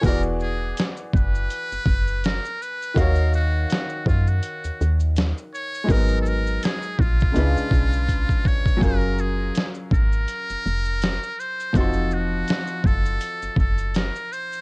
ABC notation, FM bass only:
X:1
M:4/4
L:1/16
Q:"Swing 16ths" 1/4=82
K:Ebdor
V:1 name="FM bass" clef=bass
=E,,,4 z2 ^F,,,2 z F,,, F,,,3 z3 | E,,4 z2 G,,2 z E,, E,,3 z3 | A,,,4 z2 B,,,2 D,, _C,, C,,3 z3 | G,,,4 z2 A,,,2 z F,,, F,,,3 z3 |
F,,,4 z2 G,,,2 z G,,, G,,,3 z3 |]